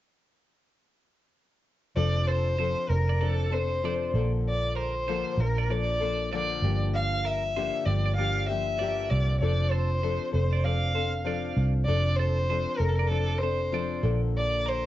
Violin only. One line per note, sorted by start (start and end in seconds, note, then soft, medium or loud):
1.97 2.29 D5 medium
2.27 2.91 C5 medium
2.90 3.23 A#4 medium
3.21 3.55 A4 medium
3.53 4.15 C5 medium
4.49 4.76 D5 medium
4.78 5.41 C5 medium
5.40 5.73 A#4 medium
5.72 6.33 D5 medium
6.34 6.79 D5 medium
6.95 7.28 F5 loud
7.26 7.87 E5 medium
7.86 8.16 D5 medium
8.17 8.46 F5 medium
8.49 9.11 E5 medium
9.10 9.40 D5 medium
9.40 9.72 D5 medium
9.71 10.33 C5 medium
10.34 10.66 C5 medium
10.64 11.57 F5 medium
11.86 12.18 D5 medium
12.16 12.79 C5 medium
12.77 12.90 A#4 medium
12.89 12.97 A4 medium
12.95 13.09 A#4 medium
13.07 13.40 A4 medium
13.38 14.02 C5 medium
14.38 14.70 D5 loud
14.68 14.86 C5 medium